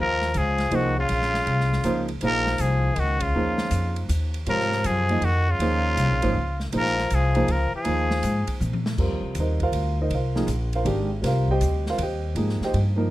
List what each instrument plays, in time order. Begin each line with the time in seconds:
Already playing: upright bass D#2
0.00 trombone F3, muted trumpet A#4
0.21 snare
0.34 upright bass C#2, trombone F3, muted trumpet G#4, hi-hat pedal, ride
0.58 snare, ride
0.71 upright bass C2, trombone D#3, grand piano F3 A#3 D#4 G#4 C5, ride
0.75 muted trumpet F#4
0.98 trombone C#3, muted trumpet F4
1.09 upright bass A#1, ride
1.22 snare
1.34 snare
1.47 upright bass C2, ride
1.60 snare
1.72 snare
1.84 upright bass C#2, grand piano F3 A#3 D#4 G#4 C5, hi-hat pedal, ride
2.08 ride
2.21 upright bass A#1, trombone F3, grand piano F3 A#3 D#4 G#4 C5, muted trumpet A#4, ride
2.46 snare
2.58 upright bass C2, trombone F3, muted trumpet G#4, hi-hat pedal, ride
2.96 upright bass C#2, trombone D#3, muted trumpet F#4, ride
3.20 trombone C#3, muted trumpet F4, kick, ride
3.34 upright bass D#2, grand piano F3 A#3 D#4 G#4 C5
3.58 snare
3.71 upright bass F2, hi-hat pedal, ride
3.96 ride
4.09 upright bass D#2, hi-hat pedal, ride
4.34 ride
4.46 upright bass G#2, grand piano C3 F3 F4 A#4 C#5, trombone F3, muted trumpet A#4, ride
4.60 snare
4.72 snare
4.84 upright bass F#2, trombone F3, muted trumpet G#4, hi-hat pedal, ride
5.09 grand piano F3 A#3 D#4 G#4 D#5, ride
5.21 upright bass F2, trombone D#3, muted trumpet F#4, ride
5.49 trombone C#3, muted trumpet F4
5.59 upright bass D#2, grand piano F3 A#3 D#4 G#4 C5, ride
5.97 upright bass C2, hi-hat pedal, ride
6.11 upright bass A#1
6.22 upright bass G#1, grand piano F3 A#3 D#4 G#4 C5, ride
6.35 upright bass C#2
6.60 snare
6.72 upright bass A#1, grand piano F3 A#3 D#4 G#4 C5, trombone F3, ride
6.77 muted trumpet A#4
6.86 snare
6.98 snare
7.10 upright bass C2, trombone F3, hi-hat pedal, ride
7.15 muted trumpet G#4
7.35 grand piano F3 A#3 D#4 G#4 C5, ride
7.48 upright bass C#2, trombone F3, muted trumpet A#4, ride
7.72 trombone F3, muted trumpet G#4, muted upright bass stroke
7.84 upright bass D#2, grand piano F3 A#3 D#4 G#4 C5, ride
8.11 snare
8.23 upright bass G#2, hi-hat pedal, ride
8.47 muted upright bass stroke, kick, ride
8.60 upright bass A#2, hi-hat pedal, high tom
8.73 high tom
8.86 snare
8.98 upright bass F2, grand piano G3 C4 F4 A#4, kick, crash
9.10 upright bass D#2
9.22 upright bass C2
9.35 upright bass D#2, hi-hat pedal, ride
9.40 grand piano D#4 A#4 C5 D#5
9.60 grand piano F4 A#4 C5 F5, kick, ride
9.72 upright bass D2, ride
10.02 grand piano D#4 A#4 C5 D#5
10.10 upright bass C2, ride
10.15 grand piano F4 A#4 C5 F5
10.35 grand piano F3 A#3 D#4 G#4, snare
10.47 upright bass A#1, hi-hat pedal, ride
10.73 grand piano F4 A#4 C5 F5, ride
10.85 upright bass G#1, grand piano D#3 G#3 D4 G4, ride
11.22 upright bass C2, grand piano G3 C4 F4 A#4, snare, ride
11.27 grand piano F4 A#4 C5 F5
11.48 grand piano G4 C5 D#5 G5, kick
11.61 upright bass D2, hi-hat pedal, ride
11.86 grand piano F4 A#4 C5 F5, snare
11.98 upright bass D#2, ride
12.02 grand piano G4 C5 D#5 G5
12.35 upright bass G#2, grand piano F3 A#3 D#4 G#4, ride
12.49 snare
12.60 grand piano G5, muted upright bass stroke, snare
12.65 grand piano G4 C5 D#5
12.73 upright bass G2, ride
12.96 grand piano F3 A#3 D#4 A#4